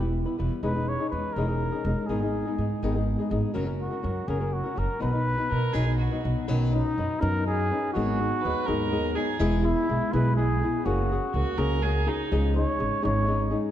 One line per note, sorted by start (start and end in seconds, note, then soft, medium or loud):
0.00 0.23 E1 medium
0.00 0.26 B3 soft
0.00 0.25 E4 soft
0.00 0.16 G4 medium
0.00 0.24 B4 soft
0.26 0.37 B3 soft
0.26 0.38 E4 soft
0.26 0.38 B4 soft
0.38 0.47 E1 medium
0.38 0.63 G3 soft
0.38 0.63 B3 medium
0.38 0.62 E4 medium
0.38 0.64 B4 medium
0.63 0.95 E1 medium
0.63 0.76 E3 medium
0.63 0.76 G#3 medium
0.63 0.75 C#4 medium
0.63 0.75 D#4 medium
0.63 0.74 G#4 medium
0.63 0.90 B4 medium
0.75 1.00 C#4 soft
0.75 0.99 D#4 soft
0.75 0.98 G#4 soft
0.89 1.10 C#5 medium
0.99 1.12 C#4 soft
0.99 1.12 D#4 soft
0.99 1.12 G#4 soft
1.10 1.28 E2 medium
1.10 1.36 G#3 soft
1.10 1.36 C#4 soft
1.10 1.37 D#4 medium
1.10 1.37 G#4 medium
1.10 1.34 B4 medium
1.33 1.68 E1 medium
1.33 2.08 A#4 medium
1.37 1.49 E3 medium
1.37 1.49 G#3 medium
1.37 1.49 C#4 medium
1.37 1.48 D#4 medium
1.37 1.47 G#4 medium
1.48 1.73 C#4 soft
1.48 1.72 D#4 soft
1.48 1.71 G#4 soft
1.72 1.85 C#4 soft
1.72 1.86 D#4 soft
1.72 1.85 G#4 soft
1.85 1.93 E1 medium
1.85 2.08 G#3 soft
1.85 2.09 C#4 medium
1.85 2.09 D#4 medium
1.85 2.09 G#4 medium
2.06 2.41 G#1 medium
2.06 2.22 G#2 medium
2.06 2.22 D#3 medium
2.06 2.22 G#3 medium
2.06 2.22 B3 medium
2.06 2.22 D#4 medium
2.06 3.06 G#4 medium
2.06 2.21 G#4 medium
2.22 2.47 G#3 soft
2.22 2.45 B3 soft
2.22 2.46 D#4 soft
2.22 2.44 G#4 soft
2.45 2.57 G#3 soft
2.45 2.57 B3 soft
2.45 2.59 D#4 soft
2.45 2.58 G#4 soft
2.58 2.74 G#2 medium
2.58 2.81 G#3 soft
2.58 2.82 B3 medium
2.58 2.83 D#4 medium
2.58 2.83 G#4 medium
2.82 3.14 G#1 medium
2.82 2.95 G#2 medium
2.82 2.95 D#3 medium
2.82 2.95 G#3 medium
2.82 2.95 B3 medium
2.82 2.95 D#4 medium
2.82 2.94 G#4 medium
2.96 3.20 G#3 soft
2.96 3.19 B3 medium
2.96 3.19 D#4 soft
2.96 3.17 G#4 soft
3.19 3.29 G#3 soft
3.19 3.30 B3 soft
3.19 3.30 D#4 soft
3.19 3.31 G#4 medium
3.30 3.39 G#1 medium
3.30 3.53 G#3 medium
3.30 3.54 B3 medium
3.30 3.54 D#4 medium
3.30 3.54 G#4 medium
3.54 3.87 F#1 medium
3.54 3.67 F#3 medium
3.54 3.67 C#4 medium
3.54 3.66 F#4 medium
3.54 3.65 A#4 medium
3.67 3.91 C#4 soft
3.67 3.90 F#4 soft
3.67 3.90 A#4 soft
3.82 4.29 F#4 medium
3.91 4.02 C#4 soft
3.91 4.02 F#4 soft
3.91 4.02 A#4 soft
4.03 4.20 F#2 medium
4.03 4.27 F#3 soft
4.03 4.27 C#4 soft
4.03 4.27 F#4 soft
4.03 4.28 A#4 medium
4.28 4.60 F#1 medium
4.28 4.41 F#3 medium
4.28 4.40 C#4 medium
4.28 4.39 F#4 medium
4.28 4.55 G#4 medium
4.28 4.39 A#4 medium
4.40 4.65 C#4 soft
4.40 4.64 F#4 soft
4.40 4.62 A#4 soft
4.53 4.80 F#4 medium
4.64 4.74 C#4 soft
4.64 4.75 F#4 soft
4.64 4.76 A#4 soft
4.75 4.85 F#1 medium
4.75 4.99 F#3 soft
4.75 5.00 C#4 soft
4.75 5.00 F#4 medium
4.75 5.00 A#4 medium
4.75 5.01 A#4 medium
5.00 5.34 B1 medium
5.00 5.13 B2 medium
5.00 5.13 D#3 medium
5.00 5.13 F#3 medium
5.00 5.13 B3 medium
5.00 5.12 D#4 medium
5.00 5.11 B4 medium
5.00 5.96 B4 medium
5.12 5.37 F#3 soft
5.12 5.37 B3 soft
5.12 5.37 D#4 soft
5.12 5.37 B4 soft
5.38 5.49 F#3 soft
5.38 5.49 B3 soft
5.38 5.50 D#4 soft
5.38 5.50 B4 soft
5.50 5.67 B2 medium
5.50 5.73 D#4 medium
5.50 5.74 A#4 medium
5.50 5.73 B4 medium
5.73 6.07 B1 medium
5.73 5.86 B2 medium
5.73 5.87 D#3 medium
5.73 5.86 F#3 medium
5.73 5.86 B3 medium
5.73 5.86 D#4 medium
5.73 5.97 G#4 medium
5.73 5.85 B4 medium
5.86 6.12 F#3 soft
5.86 6.12 B3 soft
5.86 6.11 D#4 soft
5.86 6.11 B4 medium
5.98 6.44 F#4 medium
6.12 6.22 F#3 soft
6.12 6.22 B3 soft
6.12 6.23 D#4 soft
6.12 6.23 B4 soft
6.23 6.32 B1 medium
6.23 6.47 F#3 soft
6.23 6.48 B3 medium
6.23 6.48 D#4 medium
6.23 6.47 B4 medium
6.48 6.80 B1 medium
6.48 6.73 B2 medium
6.48 6.73 D#3 medium
6.48 6.73 F#3 medium
6.48 6.73 C#4 medium
6.48 6.73 D#4 medium
6.48 6.73 B4 medium
6.72 6.96 F#3 soft
6.72 6.98 C#4 soft
6.72 7.22 D#4 medium
6.72 6.98 D#4 soft
6.72 6.98 B4 soft
6.97 7.05 F#2 medium
6.97 7.20 F#3 soft
6.97 7.20 C#4 medium
6.97 7.19 D#4 medium
6.97 7.20 B4 medium
7.20 7.69 F#2 medium
7.20 7.47 B2 medium
7.20 7.47 D#3 soft
7.20 7.45 F#3 medium
7.20 7.45 C#4 soft
7.20 7.46 D#4 medium
7.20 7.46 A#4 loud
7.20 7.46 B4 medium
7.46 7.70 F#3 medium
7.46 7.70 C#4 medium
7.46 7.71 D#4 medium
7.46 7.91 G#4 medium
7.46 7.70 B4 soft
7.71 7.94 F#3 soft
7.71 7.95 C#4 soft
7.71 7.95 D#4 soft
7.71 7.95 B4 soft
7.94 8.27 G#1 medium
7.94 8.19 G#2 medium
7.94 8.19 D#3 medium
7.94 8.19 F#3 medium
7.94 8.20 B3 medium
7.94 8.19 D#4 medium
7.94 8.87 F#4 medium
7.94 8.19 G#4 medium
8.21 8.44 F#3 soft
8.21 8.44 B3 soft
8.21 8.44 D#4 soft
8.21 8.44 G#4 soft
8.42 8.52 D#2 medium
8.42 8.67 F#3 soft
8.42 8.67 B3 soft
8.42 8.66 D#4 medium
8.42 8.67 B4 medium
8.46 8.67 G#4 medium
8.66 9.15 D#2 medium
8.66 8.93 G#2 medium
8.66 8.93 D#3 medium
8.66 8.90 F#3 medium
8.66 8.91 B3 medium
8.66 8.91 D#4 medium
8.66 8.92 G#4 medium
8.66 9.17 A#4 loud
8.91 9.16 F#3 medium
8.91 9.16 B3 medium
8.91 9.15 D#4 medium
8.91 9.14 G#4 medium
9.15 9.39 F#3 soft
9.15 9.38 B3 medium
9.15 9.40 D#4 medium
9.15 9.39 G#4 medium
9.15 9.52 G#4 medium
9.39 9.72 E1 medium
9.39 9.64 E3 medium
9.39 9.64 G#3 medium
9.39 9.64 B3 loud
9.39 9.64 E4 medium
9.39 9.63 G#4 medium
9.64 9.88 B3 soft
9.64 10.14 E4 medium
9.64 9.89 E4 soft
9.64 9.88 G#4 medium
9.89 9.97 B1 medium
9.89 10.13 G#3 soft
9.89 10.13 B3 medium
9.89 10.13 E4 medium
9.89 10.13 G#4 medium
10.13 10.60 B1 medium
10.13 10.38 E3 medium
10.13 10.36 G#3 medium
10.13 10.37 B3 medium
10.13 10.37 E4 medium
10.13 10.37 G#4 medium
10.13 10.36 B4 medium
10.37 10.61 G#3 medium
10.37 10.62 B3 medium
10.37 10.61 E4 medium
10.37 10.87 G#4 medium
10.37 10.61 G#4 medium
10.63 10.85 B3 soft
10.63 10.85 E4 medium
10.63 10.85 G#4 soft
10.85 11.17 F#1 medium
10.85 11.10 F#3 medium
10.85 11.10 A#3 medium
10.85 11.10 C#4 medium
10.85 11.10 F#4 medium
10.85 11.83 F#4 medium
10.85 11.11 G#4 medium
11.12 11.34 C#4 soft
11.12 11.34 F#4 soft
11.12 11.35 G#4 medium
11.34 11.42 C#2 medium
11.34 11.57 A#3 soft
11.34 11.58 C#4 soft
11.34 11.60 F#4 medium
11.34 11.57 F#4 medium
11.34 11.57 G#4 medium
11.58 12.05 C#2 medium
11.58 11.83 F#3 medium
11.58 11.82 A#3 medium
11.58 11.82 C#4 medium
11.58 11.83 F#4 medium
11.58 11.83 G#4 medium
11.58 11.84 A#4 medium
11.82 12.07 A#3 medium
11.82 12.07 C#4 medium
11.82 12.07 F#4 medium
11.82 12.09 G#4 medium
11.82 12.05 G#4 medium
12.07 12.31 C#4 soft
12.07 12.44 D#4 medium
12.07 12.31 F#4 soft
12.07 12.31 G#4 medium
12.31 12.63 C#2 medium
12.31 12.56 C#3 medium
12.31 12.56 F3 medium
12.31 12.56 G#3 medium
12.31 12.56 C#4 medium
12.31 12.56 D#4 medium
12.31 12.55 G#4 medium
12.56 12.78 G#3 soft
12.56 12.78 C#4 soft
12.56 12.79 D#4 soft
12.56 12.79 G#4 medium
12.56 13.00 C#5 medium
12.79 12.88 G#1 medium
12.79 13.02 G#3 soft
12.79 13.03 C#4 medium
12.79 13.01 D#4 medium
12.79 13.01 G#4 medium
13.02 13.52 G#1 medium
13.02 13.28 C#3 medium
13.02 13.28 F3 soft
13.02 13.25 G#3 medium
13.02 13.26 C#4 medium
13.02 13.27 D#4 medium
13.02 13.27 G#4 medium
13.02 13.49 C#5 medium
13.26 13.51 G#3 soft
13.26 13.50 C#4 medium
13.26 13.50 D#4 medium
13.26 13.49 G#4 soft
13.51 13.71 G#3 soft
13.51 13.71 C#4 soft
13.51 13.71 D#4 soft
13.51 13.71 G#4 soft